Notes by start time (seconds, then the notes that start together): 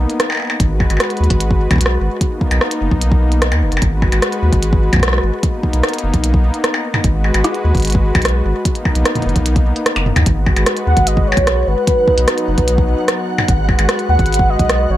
Already playing: A#3 B3 D#4
0.10 closed hi-hat
0.20 cross-stick, closed hi-hat
0.30 percussion blips
0.32 percussion blips
0.35 percussion blips
0.37 percussion blips
0.40 percussion blips
0.42 percussion blips
0.45 percussion blips
0.47 percussion blips
0.50 percussion blips
0.60 G#1 G#3 F#4 B4, kick, closed hi-hat
0.80 kick, percussion blips
0.90 G#1, closed hi-hat, percussion blips
0.97 cross-stick, closed hi-hat, percussion blips
1.04 percussion blips
1.10 closed hi-hat
1.17 D#2, closed hi-hat
1.24 closed hi-hat
1.30 G#1, kick, closed hi-hat
1.40 closed hi-hat
1.51 kick
1.71 B1, kick, closed hi-hat, percussion blips
1.73 kick
1.76 kick
1.78 kick, closed hi-hat
1.86 cross-stick
2.01 G#1
2.21 A#3 B3 D#4, kick, closed hi-hat
2.41 kick
2.51 B1, closed hi-hat, percussion blips
2.61 cross-stick
2.71 closed hi-hat
2.81 F#1
2.91 B1, kick
3.01 closed hi-hat
3.12 kick
3.32 closed hi-hat
3.42 cross-stick, closed hi-hat
3.52 D#2, closed hi-hat, percussion blips
3.62 F#1
3.72 F#1, closed hi-hat
3.77 percussion blips
3.82 G#1 G#3 F#4 B4, kick, closed hi-hat
4.02 kick, percussion blips
4.12 G#1, closed hi-hat, percussion blips
4.22 cross-stick, closed hi-hat
4.32 closed hi-hat
4.43 D#2
4.53 G#1, kick, closed hi-hat
4.63 closed hi-hat
4.73 kick
4.93 B1, kick, closed hi-hat, percussion blips
4.96 kick
5.00 kick, cross-stick, closed hi-hat
5.08 cross-stick
5.13 cross-stick
5.18 cross-stick
5.23 G#1
5.43 A#3 B3 D#4, kick, closed hi-hat
5.63 kick
5.73 B1, closed hi-hat
5.83 cross-stick, closed hi-hat
5.89 closed hi-hat
5.94 closed hi-hat
5.99 closed hi-hat
6.04 F#1
6.14 B1, kick, closed hi-hat
6.24 closed hi-hat
6.34 kick
6.54 closed hi-hat
6.64 cross-stick, closed hi-hat
6.74 percussion blips
6.94 mid tom, percussion blips
7.04 G#1 G#3 F#4 B4, kick, closed hi-hat
7.24 percussion blips
7.34 G#1, closed hi-hat, percussion blips
7.44 cross-stick, closed hi-hat
7.55 closed hi-hat
7.65 D#2
7.75 G#1, kick, closed hi-hat
7.77 closed hi-hat
7.80 closed hi-hat
7.82 closed hi-hat
7.85 closed hi-hat
7.87 closed hi-hat
7.90 closed hi-hat
7.92 kick, closed hi-hat
8.15 B1, kick, closed hi-hat, percussion blips
8.22 cross-stick, closed hi-hat
8.25 closed hi-hat
8.28 closed hi-hat
8.45 G#1
8.65 A#3 B3 D#4, kick, closed hi-hat
8.75 closed hi-hat
8.85 kick, percussion blips
8.95 B1, closed hi-hat
9.05 cross-stick, closed hi-hat
9.15 closed hi-hat, mid tom
9.19 closed hi-hat, mid tom
9.22 mid tom
9.26 F#1, closed hi-hat, mid tom
9.29 mid tom
9.32 B1, kick, closed hi-hat, mid tom
9.46 closed hi-hat
9.56 kick, closed hi-hat
9.76 closed hi-hat
9.86 cross-stick, closed hi-hat
9.96 F#1, closed hi-hat, percussion blips
10.06 mid tom
10.16 D#2, closed hi-hat, mid tom, percussion blips
10.26 G#1 G#3 F#4 B4 F#5, kick, closed hi-hat
10.46 kick, percussion blips
10.56 G#1, closed hi-hat, percussion blips
10.66 cross-stick, closed hi-hat
10.77 closed hi-hat
10.87 D#2 F#5
10.97 G#1, kick, closed hi-hat
11.07 D#5, closed hi-hat
11.17 kick
11.27 C#5
11.32 percussion blips
11.37 B1, kick, closed hi-hat
11.47 cross-stick, closed hi-hat
11.67 G#1 B4
11.87 F#3 B3 D#4 B4, kick, closed hi-hat
12.08 kick
12.18 B1, closed hi-hat
12.28 cross-stick, closed hi-hat
12.38 closed hi-hat
12.48 F#1
12.58 B1, kick, closed hi-hat
12.68 closed hi-hat
12.78 kick
13.08 cross-stick, closed hi-hat
13.38 mid tom, percussion blips
13.48 G#1 G#3 F#4 B4, kick, closed hi-hat
13.69 kick, percussion blips
13.79 G#1, closed hi-hat, percussion blips
13.89 cross-stick, closed hi-hat
13.99 closed hi-hat
14.09 D#2 F#5
14.19 G#1, kick, closed hi-hat
14.26 closed hi-hat
14.33 closed hi-hat
14.34 closed hi-hat
14.39 kick
14.50 D#5
14.59 B1, kick, closed hi-hat
14.69 cross-stick, closed hi-hat
14.90 G#1 C#5